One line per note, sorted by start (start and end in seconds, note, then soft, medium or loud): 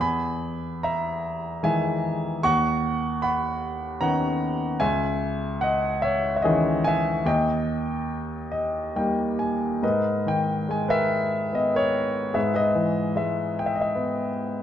0.00 2.38 E2 soft
0.00 0.79 G#5 medium
0.00 0.85 B5 medium
0.83 1.60 E5 medium
0.83 1.60 A#5 medium
1.63 2.41 D#3 soft
1.63 2.40 E3 soft
1.63 2.41 G#3 soft
1.63 2.40 E5 medium
1.63 2.45 G#5 medium
2.43 4.76 D#2 medium
2.43 3.19 F#5 medium
2.43 3.25 C#6 medium
3.22 3.98 F#5 medium
3.22 4.04 B5 medium
4.01 4.77 D#3 soft
4.01 4.77 B3 soft
4.01 4.78 C#4 soft
4.01 4.77 F#5 medium
4.01 4.76 A#5 medium
4.80 7.23 C#2 medium
4.80 5.58 E5 medium
4.80 5.64 G#5 medium
5.61 6.01 D#5 medium
5.61 6.04 F#5 medium
6.02 6.36 C#5 medium
6.02 6.35 E5 medium
6.36 6.44 E5 medium
6.42 7.25 D#3 soft
6.42 7.24 E3 soft
6.42 7.24 C#4 soft
6.42 6.83 G#4 medium
6.42 6.86 D#5 medium
6.84 7.25 E5 medium
6.84 7.28 G#5 medium
7.25 9.78 D#2 medium
7.25 8.50 D#5 medium
7.25 8.92 G5 medium
8.52 8.92 D#5 medium
8.96 9.80 G3 soft
8.96 9.80 A#3 soft
8.96 9.80 D#4 soft
8.96 9.37 G5 medium
9.39 9.79 G#5 medium
9.83 12.31 G#2 soft
9.83 10.88 A#4 soft
9.83 10.87 B4 soft
9.83 10.27 D#5 medium
10.26 11.91 D#3 soft
10.26 10.71 G5 medium
10.69 12.31 G#3 soft
10.69 10.89 G#5 medium
10.88 11.73 A#4 soft
10.88 12.10 B4 soft
10.88 11.55 E5 medium
11.53 12.33 B3 soft
11.53 11.73 D#5 medium
11.75 12.32 A#4 soft
11.75 12.38 C#5 medium
12.34 14.63 G#2 soft
12.34 12.53 G#4 soft
12.34 12.53 B4 soft
12.34 12.54 E5 medium
12.54 13.70 G#4 soft
12.54 13.70 B4 soft
12.54 13.11 D#5 medium
12.75 14.30 E3 soft
13.16 14.63 G#3 soft
13.16 13.57 E5 medium
13.59 13.68 G5 medium
13.66 13.76 E5 medium
13.76 13.85 D#5 medium
13.81 13.92 E5 medium
13.95 14.63 B3 soft